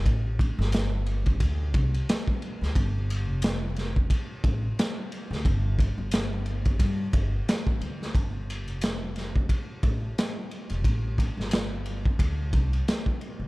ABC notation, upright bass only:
X:1
M:4/4
L:1/16
Q:"Swing 16ths" 1/4=89
K:Cmix
V:1 name="Upright bass" clef=bass
A,,,3 G,,,4- G,,, D,,2 C,,2 z3 D,, | G,,,3 F,,,4- F,,, z2 A,,,2 z3 D,, | G,,,3 G,,,4- G,,, G,,2 G,,,2 z A,,, D,,2 | G,,,3 F,,,4- F,,, z2 A,,,2 z3 E,,, |
A,,,3 G,,,4- G,,, D,,2 C,,2 z3 D,, |]